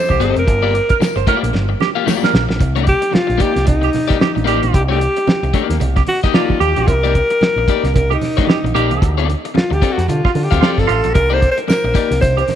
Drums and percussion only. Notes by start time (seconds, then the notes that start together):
0.10 kick, high conga
0.21 closed hi-hat
0.36 closed hi-hat
0.48 kick, closed hi-hat
0.75 closed hi-hat
0.89 kick, closed hi-hat
1.01 snare, tambourine, high conga
1.17 closed hi-hat
1.27 kick, closed hi-hat
1.44 closed hi-hat
1.53 snare, muted conga
1.80 snare, muted conga
2.07 snare, tambourine, high conga
2.23 snare, high conga
2.35 snare
2.50 snare
2.60 kick, closed hi-hat
2.76 closed hi-hat
2.87 kick, closed hi-hat, muted conga
3.02 closed hi-hat
3.13 snare, high conga
3.30 closed hi-hat
3.40 kick, closed hi-hat
3.56 snare, closed hi-hat
3.67 kick, closed hi-hat, muted conga, low conga
3.83 closed hi-hat
3.93 snare, open hi-hat, muted conga, low conga
4.10 kick, snare, closed hi-hat
4.20 snare, high conga
4.37 closed hi-hat, high conga
4.47 closed hi-hat
4.63 closed hi-hat, high conga
4.74 kick, closed hi-hat
5.01 closed hi-hat, muted conga
5.16 closed hi-hat
5.28 snare, high conga
5.43 closed hi-hat
5.54 kick, closed hi-hat
5.70 snare, closed hi-hat
5.80 closed hi-hat, muted conga, low conga
5.97 kick, snare, closed hi-hat
6.07 open hi-hat, muted conga
6.24 kick, snare, closed hi-hat
6.33 snare, high conga
6.49 kick, high conga
6.61 closed hi-hat
6.76 closed hi-hat, high conga
6.88 kick, closed hi-hat
7.05 closed hi-hat
7.15 kick, closed hi-hat
7.30 closed hi-hat
7.41 snare, high conga
7.68 kick, closed hi-hat
7.85 snare, closed hi-hat
7.94 kick, closed hi-hat, muted conga, low conga
8.12 closed hi-hat
8.21 snare, open hi-hat, muted conga, low conga
8.38 kick, snare, closed hi-hat
8.47 snare, high conga
8.63 closed hi-hat, high conga
8.76 closed hi-hat
8.90 closed hi-hat, high conga
9.02 kick, closed hi-hat
9.19 closed hi-hat
9.29 closed hi-hat, muted conga
9.45 closed hi-hat
9.55 snare, high conga
9.73 closed hi-hat
9.82 kick, closed hi-hat
9.99 snare, closed hi-hat
10.08 closed hi-hat, muted conga, low conga
10.25 kick, snare
10.35 open hi-hat, muted conga
10.52 kick, snare, closed hi-hat
10.62 snare, high conga
10.78 kick, snare, closed hi-hat, high conga
10.89 closed hi-hat
11.04 closed hi-hat, high conga
11.15 kick, closed hi-hat
11.42 kick, closed hi-hat
11.58 closed hi-hat
11.68 snare, tambourine, high conga
11.95 kick, closed hi-hat
12.12 snare, closed hi-hat
12.21 kick, closed hi-hat, muted conga, low conga
12.38 closed hi-hat
12.48 snare, open hi-hat, muted conga, low conga